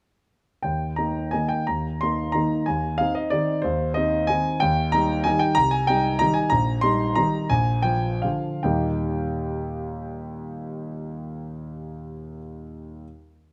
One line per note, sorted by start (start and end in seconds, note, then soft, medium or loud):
0.63 0.98 D#2 soft
0.63 0.98 G5 medium
0.96 1.30 A#3 soft
0.96 1.30 D#4 soft
0.96 1.33 A#5 medium
1.31 1.64 D#3 soft
1.31 1.64 A#3 soft
1.31 1.65 D#4 soft
1.31 1.50 G#5 medium
1.49 1.67 G5 medium
1.67 2.00 D#2 soft
1.67 2.00 A#5 medium
2.01 2.32 A#3 soft
2.01 2.32 D#4 soft
2.01 2.35 C6 medium
2.32 2.64 D#3 soft
2.32 2.64 A#3 soft
2.32 2.64 D#4 soft
2.32 2.66 A#5 medium
2.66 2.99 D#2 soft
2.66 2.99 G#5 medium
2.98 3.30 C4 soft
2.98 3.30 D#4 soft
2.98 3.15 F5 medium
3.15 3.32 D#5 medium
3.30 3.62 D#3 soft
3.30 3.62 C4 soft
3.30 3.62 D#4 soft
3.30 3.64 D5 medium
3.62 3.95 D#2 medium
3.62 3.95 C5 medium
3.94 4.26 C4 soft
3.94 4.27 D#4 soft
3.94 4.29 D#5 medium
4.27 4.59 D#3 soft
4.27 4.58 C4 soft
4.27 4.59 D#4 soft
4.27 4.61 G#5 medium
4.60 4.93 D#2 medium
4.60 4.93 G5 medium
4.92 5.23 G3 soft
4.92 5.24 D#4 soft
4.92 5.26 A#5 loud
5.24 5.55 D#3 soft
5.24 5.55 G3 soft
5.24 5.55 D#4 soft
5.24 5.41 G#5 medium
5.39 5.57 G5 medium
5.55 5.88 C2 medium
5.55 5.72 A#5 loud
5.71 5.89 G#5 medium
5.87 6.18 G3 soft
5.87 6.19 D#4 soft
5.87 6.21 G5 medium
6.19 6.50 D#3 soft
6.19 6.50 G3 soft
6.19 6.50 D#4 soft
6.19 6.36 A#5 loud
6.34 6.51 G#5 medium
6.50 6.84 A#1 medium
6.50 6.83 A#5 medium
6.81 7.14 G3 soft
6.81 7.14 D#4 soft
6.81 7.16 C6 medium
7.15 7.48 D#3 soft
7.15 7.48 G3 soft
7.15 7.48 D#4 soft
7.15 7.50 A#5 medium
7.50 7.84 A#1 medium
7.50 7.85 G#5 medium
7.82 8.20 F3 soft
7.82 8.20 F4 soft
7.82 8.23 G5 medium
8.22 8.61 D3 soft
8.22 8.61 F3 soft
8.22 8.61 F4 soft
8.22 8.64 F5 medium
8.63 12.37 D#2 medium
8.63 12.37 A#2 soft
8.63 12.37 G3 soft
8.63 12.38 A#3 soft
8.63 12.38 D#4 soft
8.63 12.38 G4 soft
8.63 12.37 G5 medium